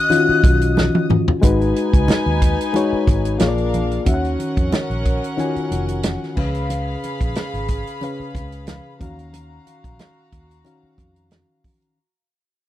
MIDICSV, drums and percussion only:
0, 0, Header, 1, 2, 480
1, 0, Start_track
1, 0, Tempo, 659051
1, 1039, Time_signature, 4, 2, 24, 8
1, 9235, End_track
2, 0, Start_track
2, 0, Title_t, "Drums"
2, 74, Note_on_c, 9, 62, 53
2, 86, Note_on_c, 9, 42, 82
2, 147, Note_off_c, 9, 62, 0
2, 158, Note_off_c, 9, 42, 0
2, 318, Note_on_c, 9, 36, 92
2, 321, Note_on_c, 9, 62, 52
2, 321, Note_on_c, 9, 64, 76
2, 323, Note_on_c, 9, 42, 79
2, 391, Note_off_c, 9, 36, 0
2, 394, Note_off_c, 9, 62, 0
2, 394, Note_off_c, 9, 64, 0
2, 396, Note_off_c, 9, 42, 0
2, 448, Note_on_c, 9, 42, 57
2, 520, Note_off_c, 9, 42, 0
2, 562, Note_on_c, 9, 63, 87
2, 565, Note_on_c, 9, 38, 66
2, 634, Note_off_c, 9, 63, 0
2, 638, Note_off_c, 9, 38, 0
2, 691, Note_on_c, 9, 48, 68
2, 763, Note_off_c, 9, 48, 0
2, 799, Note_on_c, 9, 63, 71
2, 804, Note_on_c, 9, 45, 92
2, 872, Note_off_c, 9, 63, 0
2, 876, Note_off_c, 9, 45, 0
2, 932, Note_on_c, 9, 43, 100
2, 1005, Note_off_c, 9, 43, 0
2, 1039, Note_on_c, 9, 62, 50
2, 1042, Note_on_c, 9, 36, 103
2, 1043, Note_on_c, 9, 42, 93
2, 1111, Note_off_c, 9, 62, 0
2, 1115, Note_off_c, 9, 36, 0
2, 1116, Note_off_c, 9, 42, 0
2, 1175, Note_on_c, 9, 42, 33
2, 1248, Note_off_c, 9, 42, 0
2, 1284, Note_on_c, 9, 42, 75
2, 1357, Note_off_c, 9, 42, 0
2, 1409, Note_on_c, 9, 36, 97
2, 1414, Note_on_c, 9, 42, 50
2, 1482, Note_off_c, 9, 36, 0
2, 1487, Note_off_c, 9, 42, 0
2, 1517, Note_on_c, 9, 63, 77
2, 1523, Note_on_c, 9, 42, 74
2, 1532, Note_on_c, 9, 38, 99
2, 1590, Note_off_c, 9, 63, 0
2, 1596, Note_off_c, 9, 42, 0
2, 1604, Note_off_c, 9, 38, 0
2, 1761, Note_on_c, 9, 42, 80
2, 1762, Note_on_c, 9, 36, 87
2, 1834, Note_off_c, 9, 36, 0
2, 1834, Note_off_c, 9, 42, 0
2, 1898, Note_on_c, 9, 42, 61
2, 1971, Note_off_c, 9, 42, 0
2, 1995, Note_on_c, 9, 62, 51
2, 2008, Note_on_c, 9, 42, 87
2, 2068, Note_off_c, 9, 62, 0
2, 2081, Note_off_c, 9, 42, 0
2, 2239, Note_on_c, 9, 36, 92
2, 2241, Note_on_c, 9, 62, 48
2, 2241, Note_on_c, 9, 64, 71
2, 2245, Note_on_c, 9, 42, 78
2, 2312, Note_off_c, 9, 36, 0
2, 2314, Note_off_c, 9, 62, 0
2, 2314, Note_off_c, 9, 64, 0
2, 2318, Note_off_c, 9, 42, 0
2, 2368, Note_on_c, 9, 42, 55
2, 2441, Note_off_c, 9, 42, 0
2, 2473, Note_on_c, 9, 42, 99
2, 2481, Note_on_c, 9, 38, 117
2, 2484, Note_on_c, 9, 63, 76
2, 2546, Note_off_c, 9, 42, 0
2, 2553, Note_off_c, 9, 38, 0
2, 2557, Note_off_c, 9, 63, 0
2, 2606, Note_on_c, 9, 42, 34
2, 2678, Note_off_c, 9, 42, 0
2, 2722, Note_on_c, 9, 42, 67
2, 2725, Note_on_c, 9, 63, 67
2, 2795, Note_off_c, 9, 42, 0
2, 2798, Note_off_c, 9, 63, 0
2, 2850, Note_on_c, 9, 42, 46
2, 2923, Note_off_c, 9, 42, 0
2, 2958, Note_on_c, 9, 42, 88
2, 2959, Note_on_c, 9, 62, 51
2, 2961, Note_on_c, 9, 36, 97
2, 3031, Note_off_c, 9, 42, 0
2, 3032, Note_off_c, 9, 62, 0
2, 3034, Note_off_c, 9, 36, 0
2, 3092, Note_on_c, 9, 42, 33
2, 3165, Note_off_c, 9, 42, 0
2, 3202, Note_on_c, 9, 62, 31
2, 3203, Note_on_c, 9, 42, 68
2, 3275, Note_off_c, 9, 62, 0
2, 3276, Note_off_c, 9, 42, 0
2, 3329, Note_on_c, 9, 36, 97
2, 3330, Note_on_c, 9, 42, 46
2, 3402, Note_off_c, 9, 36, 0
2, 3403, Note_off_c, 9, 42, 0
2, 3439, Note_on_c, 9, 42, 69
2, 3441, Note_on_c, 9, 63, 73
2, 3448, Note_on_c, 9, 38, 113
2, 3512, Note_off_c, 9, 42, 0
2, 3514, Note_off_c, 9, 63, 0
2, 3521, Note_off_c, 9, 38, 0
2, 3574, Note_on_c, 9, 42, 34
2, 3647, Note_off_c, 9, 42, 0
2, 3680, Note_on_c, 9, 42, 75
2, 3682, Note_on_c, 9, 36, 81
2, 3753, Note_off_c, 9, 42, 0
2, 3754, Note_off_c, 9, 36, 0
2, 3817, Note_on_c, 9, 42, 61
2, 3889, Note_off_c, 9, 42, 0
2, 3921, Note_on_c, 9, 62, 48
2, 3927, Note_on_c, 9, 42, 71
2, 3994, Note_off_c, 9, 62, 0
2, 3999, Note_off_c, 9, 42, 0
2, 4051, Note_on_c, 9, 42, 34
2, 4124, Note_off_c, 9, 42, 0
2, 4163, Note_on_c, 9, 42, 71
2, 4165, Note_on_c, 9, 62, 50
2, 4236, Note_off_c, 9, 42, 0
2, 4238, Note_off_c, 9, 62, 0
2, 4285, Note_on_c, 9, 42, 54
2, 4358, Note_off_c, 9, 42, 0
2, 4394, Note_on_c, 9, 42, 96
2, 4401, Note_on_c, 9, 38, 109
2, 4408, Note_on_c, 9, 63, 80
2, 4466, Note_off_c, 9, 42, 0
2, 4474, Note_off_c, 9, 38, 0
2, 4481, Note_off_c, 9, 63, 0
2, 4536, Note_on_c, 9, 38, 34
2, 4609, Note_off_c, 9, 38, 0
2, 4638, Note_on_c, 9, 49, 72
2, 4640, Note_on_c, 9, 36, 90
2, 4644, Note_on_c, 9, 63, 61
2, 4710, Note_off_c, 9, 49, 0
2, 4713, Note_off_c, 9, 36, 0
2, 4717, Note_off_c, 9, 63, 0
2, 4766, Note_on_c, 9, 42, 48
2, 4839, Note_off_c, 9, 42, 0
2, 4879, Note_on_c, 9, 62, 48
2, 4880, Note_on_c, 9, 42, 90
2, 4952, Note_off_c, 9, 62, 0
2, 4953, Note_off_c, 9, 42, 0
2, 5123, Note_on_c, 9, 42, 69
2, 5127, Note_on_c, 9, 62, 33
2, 5196, Note_off_c, 9, 42, 0
2, 5199, Note_off_c, 9, 62, 0
2, 5249, Note_on_c, 9, 36, 86
2, 5251, Note_on_c, 9, 42, 48
2, 5322, Note_off_c, 9, 36, 0
2, 5324, Note_off_c, 9, 42, 0
2, 5356, Note_on_c, 9, 42, 81
2, 5364, Note_on_c, 9, 38, 113
2, 5367, Note_on_c, 9, 63, 63
2, 5428, Note_off_c, 9, 42, 0
2, 5437, Note_off_c, 9, 38, 0
2, 5440, Note_off_c, 9, 63, 0
2, 5492, Note_on_c, 9, 42, 38
2, 5565, Note_off_c, 9, 42, 0
2, 5596, Note_on_c, 9, 42, 77
2, 5600, Note_on_c, 9, 36, 91
2, 5668, Note_off_c, 9, 42, 0
2, 5673, Note_off_c, 9, 36, 0
2, 5733, Note_on_c, 9, 42, 57
2, 5806, Note_off_c, 9, 42, 0
2, 5836, Note_on_c, 9, 62, 47
2, 5845, Note_on_c, 9, 42, 78
2, 5908, Note_off_c, 9, 62, 0
2, 5917, Note_off_c, 9, 42, 0
2, 6079, Note_on_c, 9, 36, 89
2, 6083, Note_on_c, 9, 62, 48
2, 6083, Note_on_c, 9, 64, 68
2, 6088, Note_on_c, 9, 42, 72
2, 6152, Note_off_c, 9, 36, 0
2, 6156, Note_off_c, 9, 62, 0
2, 6156, Note_off_c, 9, 64, 0
2, 6160, Note_off_c, 9, 42, 0
2, 6207, Note_on_c, 9, 42, 52
2, 6279, Note_off_c, 9, 42, 0
2, 6313, Note_on_c, 9, 42, 100
2, 6320, Note_on_c, 9, 38, 102
2, 6325, Note_on_c, 9, 63, 81
2, 6386, Note_off_c, 9, 42, 0
2, 6393, Note_off_c, 9, 38, 0
2, 6398, Note_off_c, 9, 63, 0
2, 6560, Note_on_c, 9, 36, 95
2, 6561, Note_on_c, 9, 42, 62
2, 6563, Note_on_c, 9, 63, 67
2, 6633, Note_off_c, 9, 36, 0
2, 6634, Note_off_c, 9, 42, 0
2, 6636, Note_off_c, 9, 63, 0
2, 6691, Note_on_c, 9, 42, 47
2, 6764, Note_off_c, 9, 42, 0
2, 6800, Note_on_c, 9, 42, 89
2, 6800, Note_on_c, 9, 62, 52
2, 6872, Note_off_c, 9, 42, 0
2, 6872, Note_off_c, 9, 62, 0
2, 7041, Note_on_c, 9, 42, 67
2, 7042, Note_on_c, 9, 62, 30
2, 7114, Note_off_c, 9, 42, 0
2, 7115, Note_off_c, 9, 62, 0
2, 7168, Note_on_c, 9, 36, 90
2, 7171, Note_on_c, 9, 42, 48
2, 7241, Note_off_c, 9, 36, 0
2, 7244, Note_off_c, 9, 42, 0
2, 7276, Note_on_c, 9, 42, 75
2, 7280, Note_on_c, 9, 63, 70
2, 7285, Note_on_c, 9, 38, 100
2, 7349, Note_off_c, 9, 42, 0
2, 7353, Note_off_c, 9, 63, 0
2, 7358, Note_off_c, 9, 38, 0
2, 7518, Note_on_c, 9, 42, 74
2, 7520, Note_on_c, 9, 36, 85
2, 7591, Note_off_c, 9, 42, 0
2, 7593, Note_off_c, 9, 36, 0
2, 7654, Note_on_c, 9, 42, 60
2, 7727, Note_off_c, 9, 42, 0
2, 7754, Note_on_c, 9, 62, 48
2, 7762, Note_on_c, 9, 42, 74
2, 7827, Note_off_c, 9, 62, 0
2, 7835, Note_off_c, 9, 42, 0
2, 7997, Note_on_c, 9, 36, 95
2, 8001, Note_on_c, 9, 62, 49
2, 8003, Note_on_c, 9, 42, 71
2, 8070, Note_off_c, 9, 36, 0
2, 8074, Note_off_c, 9, 62, 0
2, 8076, Note_off_c, 9, 42, 0
2, 8128, Note_on_c, 9, 42, 54
2, 8201, Note_off_c, 9, 42, 0
2, 8235, Note_on_c, 9, 42, 94
2, 8243, Note_on_c, 9, 38, 109
2, 8243, Note_on_c, 9, 63, 73
2, 8308, Note_off_c, 9, 42, 0
2, 8316, Note_off_c, 9, 38, 0
2, 8316, Note_off_c, 9, 63, 0
2, 8480, Note_on_c, 9, 36, 96
2, 8481, Note_on_c, 9, 46, 61
2, 8482, Note_on_c, 9, 63, 68
2, 8553, Note_off_c, 9, 36, 0
2, 8553, Note_off_c, 9, 46, 0
2, 8554, Note_off_c, 9, 63, 0
2, 8609, Note_on_c, 9, 42, 43
2, 8682, Note_off_c, 9, 42, 0
2, 9235, End_track
0, 0, End_of_file